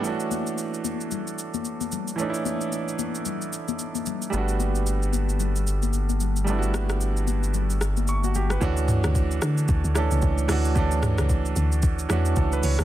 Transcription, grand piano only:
0.01 2.13 E3 medium
0.01 2.14 A3 medium
0.01 2.15 C#4 medium
0.07 2.16 D4 medium
0.07 2.17 F#4 medium
2.16 4.28 E3 medium
2.16 4.28 A3 medium
2.16 4.29 C#4 medium
2.21 4.30 D4 medium
2.21 2.28 D#4 medium
2.30 4.35 E4 medium
4.30 6.42 G3 medium
4.30 6.43 A3 medium
4.30 6.44 B3 medium
4.36 6.45 D4 medium
4.36 6.46 F#4 medium
6.44 8.56 G3 medium
6.44 8.57 A3 medium
6.44 8.58 B3 medium
6.50 8.59 D4 medium
6.50 6.57 E4 medium
6.58 7.84 F#4 medium
8.09 8.58 C#6 medium
8.24 8.35 F#4 medium
8.36 8.50 G4 medium
8.51 8.76 B4 medium
8.61 9.48 E3 medium
8.61 9.48 A3 medium
8.61 9.49 C#4 medium
8.61 9.49 D4 medium
8.61 9.50 F#4 loud
9.94 10.40 E3 medium
9.94 10.40 A3 medium
9.94 10.41 C#4 medium
9.94 10.41 D4 medium
9.94 10.41 A4 medium
10.48 10.71 E3 medium
10.48 10.71 A3 medium
10.48 10.72 C#4 medium
10.48 10.72 D4 medium
10.48 10.73 F#4 loud
10.75 11.62 E3 medium
10.75 11.62 A3 medium
10.75 11.63 C#4 medium
10.75 11.63 D4 medium
10.75 11.64 A4 loud
12.09 12.54 E3 medium
12.09 12.54 A3 medium
12.09 12.55 C#4 medium
12.09 12.55 D4 medium
12.09 12.56 F#4 medium
12.37 12.52 A4 medium
12.53 12.63 B4 medium
12.64 12.79 C#5 medium
12.80 12.84 A4 medium

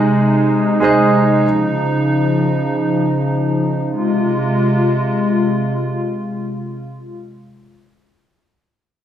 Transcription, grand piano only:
0.00 0.77 G#3 medium
0.00 0.78 G#4 medium
0.00 0.79 C5 medium
0.00 0.81 D#5 medium
0.80 1.43 G#3 medium
0.80 1.44 G#4 medium
0.80 1.44 C5 medium
0.80 1.45 D#5 medium

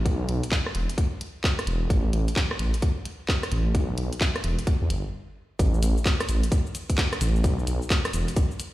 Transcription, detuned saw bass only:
0.05 0.26 B1 medium
0.29 0.41 B1 medium
0.75 0.87 E1 loud
1.67 1.87 E1 loud
1.90 2.10 A1 loud
2.13 2.25 A1 medium
2.59 2.72 A1 loud
3.52 3.72 A1 loud
3.75 3.95 B1 loud
3.98 4.10 B1 medium
4.44 4.56 E1 loud
4.82 4.89 E2 medium
4.90 5.02 G1 medium
5.59 5.80 A1 loud
5.82 5.95 A1 medium
6.29 6.41 A1 loud
7.21 7.41 A1 loud
7.44 7.64 B1 loud
7.67 7.79 B1 medium
8.13 8.26 E1 loud

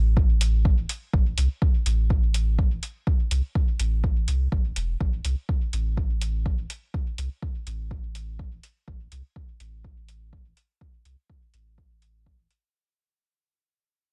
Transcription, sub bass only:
0.00 0.85 A1 loud
1.13 1.33 A1 loud
1.38 1.48 C2 medium
1.86 2.79 A1 loud
3.31 3.41 C2 medium
3.80 4.27 A1 loud
4.28 4.47 C2 medium
4.52 4.72 A1 medium
4.76 4.96 E1 medium
5.01 5.20 A1 loud
5.25 5.35 C2 medium
5.73 6.66 A1 loud
7.18 7.28 C2 medium
7.67 8.60 A1 medium
8.88 9.07 A1 loud
9.12 9.22 C2 medium
9.60 10.53 A1 medium
11.05 11.15 C2 medium
11.54 12.47 A1 medium

